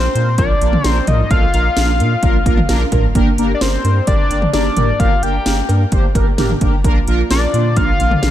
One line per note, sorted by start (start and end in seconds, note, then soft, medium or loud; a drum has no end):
0.00 0.35 C5 medium
0.15 0.40 A#2 loud
0.15 0.29 A#3 medium
0.15 0.29 D4 medium
0.15 0.29 F4 medium
0.15 0.29 A#4 medium
0.15 closed hi-hat medium
0.38 0.54 A#1 loud
0.38 0.52 A#3 medium
0.38 0.52 D4 medium
0.38 0.52 F4 medium
0.38 0.52 A#4 medium
0.38 0.87 D5 loud
0.38 kick loud
0.38 closed hi-hat medium
0.61 0.77 A#1 loud
0.61 0.75 A#3 medium
0.61 0.75 D4 medium
0.61 0.75 F4 medium
0.61 0.75 A#4 medium
0.61 closed hi-hat medium
0.73 mid tom medium
0.84 1.01 A#1 loud
0.84 0.98 A#3 loud
0.84 0.98 D4 medium
0.84 0.98 F4 medium
0.84 0.98 A#4 loud
0.84 1.09 C5 loud
0.84 snare loud
0.84 closed hi-hat medium
1.07 1.24 A#1 loud
1.07 1.21 A#3 medium
1.07 1.21 D4 medium
1.07 1.21 F4 medium
1.07 1.21 A#4 medium
1.07 1.32 D#5 loud
1.07 closed hi-hat medium
1.07 mid tom loud
1.31 1.47 A#1 loud
1.31 1.44 A#3 loud
1.31 1.44 D4 medium
1.31 1.44 F4 medium
1.31 1.44 A4 loud
1.31 1.53 F5 loud
1.31 kick loud
1.31 closed hi-hat medium
1.54 1.70 A#1 loud
1.54 1.67 A#3 loud
1.54 1.67 D4 medium
1.54 1.67 F4 medium
1.54 1.67 A#4 loud
1.54 2.88 F5 loud
1.54 closed hi-hat medium
1.77 2.01 A#1 loud
1.77 1.90 A#3 medium
1.77 1.90 D4 medium
1.77 1.90 F4 medium
1.77 1.91 A#4 medium
1.77 snare loud
1.77 closed hi-hat medium
2.00 2.16 A#2 loud
2.00 2.14 A#3 medium
2.00 2.14 D4 medium
2.00 2.14 F4 medium
2.00 2.14 A#4 medium
2.00 closed hi-hat medium
2.23 2.39 A#1 loud
2.23 2.37 A#3 loud
2.23 2.37 D4 medium
2.23 2.37 F4 medium
2.23 2.37 A#4 loud
2.23 kick loud
2.23 closed hi-hat medium
2.46 2.62 A#1 loud
2.46 2.60 A#3 medium
2.46 2.60 D4 medium
2.46 2.60 F4 medium
2.46 2.60 A#4 loud
2.46 kick medium
2.46 closed hi-hat medium
2.57 mid tom medium
2.69 2.85 A#1 loud
2.69 2.83 A#3 loud
2.69 2.83 D4 loud
2.69 2.83 F4 loud
2.69 2.83 A#4 loud
2.69 snare loud
2.69 closed hi-hat medium
2.92 3.08 A#1 loud
2.92 3.06 A#3 medium
2.92 3.06 D4 medium
2.92 3.06 F4 medium
2.92 3.06 A#4 loud
2.92 kick medium
2.92 closed hi-hat medium
2.92 mid tom loud
3.15 3.31 G1 loud
3.15 3.29 A#3 loud
3.15 3.29 D4 loud
3.15 3.29 G4 loud
3.15 3.29 A#4 loud
3.15 kick loud
3.15 closed hi-hat medium
3.38 3.54 G1 loud
3.38 3.52 A#3 loud
3.38 3.52 D4 loud
3.38 3.52 G4 loud
3.38 3.52 A#4 loud
3.38 closed hi-hat medium
3.54 3.63 D5 medium
3.61 3.78 G1 loud
3.61 3.75 A#3 medium
3.61 3.75 D4 medium
3.61 3.75 G4 medium
3.61 3.75 A#4 medium
3.61 4.07 C5 medium
3.61 snare loud
3.61 closed hi-hat medium
3.84 4.01 G2 loud
3.84 3.98 A#3 medium
3.84 3.98 D4 medium
3.84 3.98 G4 medium
3.84 3.98 A#4 medium
3.84 closed hi-hat medium
4.07 4.24 G1 loud
4.07 4.21 A#3 medium
4.07 4.21 D4 medium
4.07 4.21 G4 medium
4.07 4.21 A#4 medium
4.07 4.50 D5 loud
4.07 kick loud
4.07 closed hi-hat medium
4.31 4.47 G1 loud
4.31 4.44 A#3 medium
4.31 4.44 D4 medium
4.31 4.44 G4 medium
4.31 4.44 A#4 medium
4.31 closed hi-hat medium
4.42 mid tom medium
4.53 4.70 G1 loud
4.53 4.67 A#3 loud
4.53 4.67 D4 medium
4.53 4.67 G4 medium
4.53 4.67 A#4 loud
4.53 5.01 D5 loud
4.53 snare loud
4.53 closed hi-hat medium
4.77 4.93 G1 loud
4.77 4.91 A#3 medium
4.77 4.91 D4 medium
4.77 4.91 G4 medium
4.77 4.91 A#4 medium
4.77 closed hi-hat medium
4.77 mid tom loud
5.00 5.16 G1 loud
5.00 5.14 A#3 loud
5.00 5.14 D4 loud
5.00 5.14 G4 medium
5.00 5.14 A#4 loud
5.00 5.24 F5 loud
5.00 kick loud
5.00 closed hi-hat medium
5.23 5.39 G1 loud
5.23 5.37 A#3 loud
5.23 5.37 D4 medium
5.23 5.37 G4 medium
5.23 5.37 A#4 loud
5.23 5.69 G5 loud
5.23 closed hi-hat medium
5.46 5.62 G1 loud
5.46 5.60 A#3 medium
5.46 5.60 D4 medium
5.46 5.60 G4 medium
5.46 5.60 A#4 medium
5.46 snare loud
5.46 closed hi-hat medium
5.69 5.85 G2 loud
5.69 5.83 A#3 medium
5.69 5.83 D4 medium
5.69 5.83 G4 medium
5.69 5.83 A#4 medium
5.69 closed hi-hat medium
5.69 cowbell medium
5.92 6.08 G1 loud
5.92 6.06 A#3 medium
5.92 6.06 D4 medium
5.92 6.06 G4 medium
5.92 6.06 C5 loud
5.92 kick loud
5.92 closed hi-hat medium
6.15 6.31 G1 loud
6.15 6.29 A#3 loud
6.15 6.29 D4 medium
6.15 6.29 G4 medium
6.15 6.29 A#4 loud
6.15 kick loud
6.15 closed hi-hat medium
6.15 cowbell medium
6.38 6.55 G1 medium
6.38 6.52 A#3 loud
6.38 6.52 D4 loud
6.38 6.52 G4 loud
6.38 6.52 A#4 loud
6.38 snare loud
6.38 closed hi-hat medium
6.38 mid tom loud
6.50 mid tom medium
6.61 6.86 G1 loud
6.61 6.75 A#3 medium
6.61 6.75 D4 medium
6.61 6.75 G4 medium
6.61 6.75 A#4 loud
6.61 kick medium
6.61 closed hi-hat medium
6.84 7.01 A#1 loud
6.84 8.31 D3 medium
6.84 8.31 F3 medium
6.84 8.31 A#3 medium
6.84 6.98 A#3 loud
6.84 6.98 D4 loud
6.84 8.31 F4 loud
6.84 6.98 F4 loud
6.84 6.98 A#4 loud
6.84 kick loud
6.84 closed hi-hat medium
7.07 7.24 A#1 loud
7.07 7.21 A#3 loud
7.07 7.21 D4 loud
7.07 7.21 F4 loud
7.07 7.21 A#4 loud
7.07 closed hi-hat medium
7.31 7.47 A#1 loud
7.31 7.44 A#3 medium
7.31 7.44 D4 medium
7.31 7.44 F4 medium
7.31 7.44 A#4 medium
7.31 7.78 D5 loud
7.31 snare loud
7.31 closed hi-hat medium
7.54 7.78 A#2 loud
7.54 7.67 A#3 medium
7.54 7.67 D4 medium
7.54 7.67 F4 medium
7.54 7.67 C5 medium
7.54 closed hi-hat medium
7.77 7.93 A#1 loud
7.77 7.91 A#3 medium
7.77 7.91 D4 medium
7.77 7.91 F4 medium
7.77 7.91 A#4 medium
7.77 8.31 F5 loud
7.77 kick loud
7.77 closed hi-hat medium
8.00 8.16 A#1 loud
8.00 8.14 A#3 medium
8.00 8.14 D4 medium
8.00 8.14 F4 medium
8.00 8.14 A#4 medium
8.00 closed hi-hat medium
8.11 mid tom loud
8.23 8.31 A#1 loud
8.23 8.31 A#3 loud
8.23 8.31 D4 medium
8.23 8.31 F4 medium
8.23 8.31 A#4 loud
8.23 snare loud
8.23 closed hi-hat medium